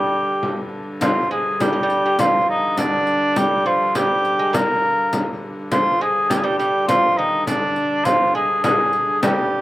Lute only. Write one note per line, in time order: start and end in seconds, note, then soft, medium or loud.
0.00 0.69 G3 medium
1.02 1.30 F3 medium
1.31 1.58 G#3 medium
1.61 1.72 G3 medium
1.73 1.82 G3 medium
1.83 2.04 G3 medium
2.06 2.19 G3 medium
2.20 2.80 F3 medium
2.78 3.39 D3 medium
3.36 3.65 G3 medium
3.66 3.96 F3 medium
3.96 4.39 G3 medium
4.39 4.54 G#3 medium
4.53 5.38 A#3 medium
5.72 6.01 F3 medium
6.01 6.30 G#3 medium
6.31 6.42 G3 medium
6.44 6.58 G3 medium
6.59 6.88 G3 medium
6.89 7.19 F3 medium
7.19 7.46 D#3 medium
7.48 8.08 D3 medium
8.05 8.34 F3 medium
8.35 8.63 G#3 medium
8.65 9.19 G#3 medium
9.23 9.61 G3 medium